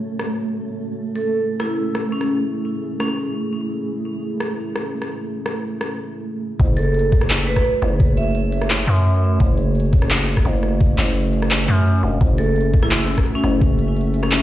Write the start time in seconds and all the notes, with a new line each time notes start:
Already playing: A3 C#4 F#4 C#5
0.19 cross-stick
0.98 E4 G#4
1.16 A4
1.60 E4, cross-stick
1.95 cross-stick
2.12 C#4
2.21 cross-stick
3.00 C#4, cross-stick
3.08 C#4
4.40 cross-stick
4.76 cross-stick
5.02 cross-stick
5.46 cross-stick
5.81 cross-stick
6.59 F#1 A3 C#4 F#4 C#5, kick, closed hi-hat
6.77 A4, closed hi-hat
6.95 closed hi-hat
6.99 closed hi-hat
7.12 kick, closed hi-hat
7.21 cross-stick
7.30 clap, closed hi-hat
7.47 B4, closed hi-hat
7.56 B4, kick, cross-stick
7.65 closed hi-hat
7.74 open hi-hat
7.82 F#1, cross-stick
8.00 kick, closed hi-hat
8.17 E5, closed hi-hat
8.35 closed hi-hat
8.52 closed hi-hat
8.62 cross-stick
8.70 clap, closed hi-hat
8.87 F#2, closed hi-hat
8.97 open hi-hat
9.05 closed hi-hat
9.40 F#1, kick, closed hi-hat
9.58 closed hi-hat
9.75 closed hi-hat
9.80 closed hi-hat
9.93 kick, closed hi-hat
10.02 cross-stick
10.11 clap, closed hi-hat
10.28 closed hi-hat
10.37 kick, cross-stick
10.45 F#1, closed hi-hat
10.54 open hi-hat
10.63 cross-stick
10.80 kick, closed hi-hat
10.98 F#1, clap, closed hi-hat
11.16 closed hi-hat
11.20 closed hi-hat
11.33 closed hi-hat
11.42 cross-stick
11.51 clap, closed hi-hat
11.68 F#2, closed hi-hat
11.77 open hi-hat
11.86 closed hi-hat
12.03 E1, closed hi-hat
12.21 F#1 E5, kick, closed hi-hat
12.38 A4, closed hi-hat
12.56 closed hi-hat
12.61 closed hi-hat
12.74 kick, closed hi-hat
12.83 E4, cross-stick
12.91 clap, closed hi-hat
13.09 closed hi-hat
13.18 kick, cross-stick
13.26 closed hi-hat
13.35 C#4, open hi-hat
13.44 F#1, cross-stick
13.61 kick, closed hi-hat
13.79 closed hi-hat
13.97 closed hi-hat
14.01 closed hi-hat
14.14 closed hi-hat
14.23 C#4, cross-stick
14.31 C#4, clap, closed hi-hat